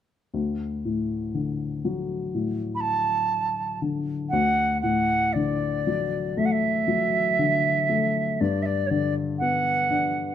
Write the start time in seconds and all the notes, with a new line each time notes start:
0.34 D2
0.85 A2
1.34 D3
1.85 F#3
2.34 A2
2.75 B5
2.80 A5
3.82 D3
4.29 D2 F#5
4.81 A2 F#5
5.32 D3 D5
5.87 F#3
6.37 A3 E5
6.45 F#5
6.51 E5
6.88 F#3
7.39 D3
7.89 A3
8.40 G2 D5
8.62 D5 E5
8.86 C#5 D5
8.91 D3
9.38 B3 F#5
9.91 D4